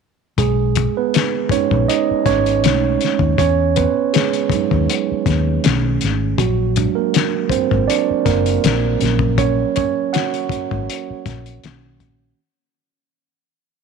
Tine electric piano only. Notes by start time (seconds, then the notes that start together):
0.39 G#3 G#4
0.97 B3 B4
1.51 G#3 C#4 D#4 C#5
1.88 D#4 D#5
2.26 C#4 C#5
2.64 G#3 A3 C#4 D#4
3.38 C#4 C#5
3.76 B3 B4
4.13 G#3 G#4
4.53 F#3 G#3 D#4
5.64 D#3 A3 C#4
6.38 F#3 F#4
6.76 F#3 G#3 D4
6.95 A#3 A#4
7.50 C4 C5
7.88 D4 D5
8.25 A#3 A#4
9.00 F#3 A#3 C#4
9.38 C#4 C#5
9.76 C#4 C#5
10.13 F#4 F#5
11.64 D#3 A#3 C#4